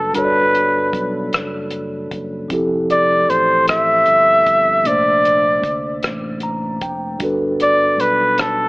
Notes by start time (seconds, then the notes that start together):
Already playing: F#1 G3 D4 F#4 A4 B4
0.13 G1 G3 D4 F#4 B4, closed hi-hat
0.17 A4 C#5
0.25 D5
0.55 closed hi-hat
0.93 B1, kick, closed hi-hat
1.33 F#1, cross-stick, closed hi-hat
1.71 closed hi-hat
2.11 F#1, kick, closed hi-hat
2.48 F1 F3 C4 E4, kick, closed hi-hat
2.52 G4 A4
2.90 D5, closed hi-hat
3.29 A1 C5, closed hi-hat
3.68 E5, cross-stick, closed hi-hat
4.06 G1, closed hi-hat
4.46 G1, kick, closed hi-hat
4.84 A#1 C3 A3 A#3 D4 D5, closed hi-hat
4.89 C5
5.25 closed hi-hat
5.64 D2, kick, closed hi-hat
6.03 A1, cross-stick, closed hi-hat
6.40 A#5, closed hi-hat
6.81 F1 G5, kick, closed hi-hat
7.19 G1 G3 D4 F#4, kick, closed hi-hat
7.23 A4 B4
7.60 D5, closed hi-hat
8.00 B1 B4, closed hi-hat
8.38 A4, cross-stick, closed hi-hat